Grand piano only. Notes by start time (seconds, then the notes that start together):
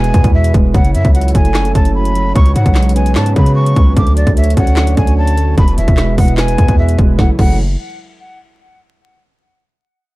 Already playing: B2 G#3 B3 B4
0.14 B2
0.54 G#3
0.74 C#3
1.15 F#3
1.34 A3
1.55 C#4
1.75 C#3
2.16 F#3
2.35 C#3
2.76 G#3
2.96 B3
3.15 C#4
3.36 C#3
3.77 G#3
3.97 D3
4.37 A3
4.57 C#4
4.77 D4
4.97 D3
5.37 A3
5.58 B2
5.98 G#3
6.18 B3
6.38 B4
6.59 B2
6.98 G#3
7.19 C#3 E3 F#3 A3
7.39 C#3 E3 F#3 A3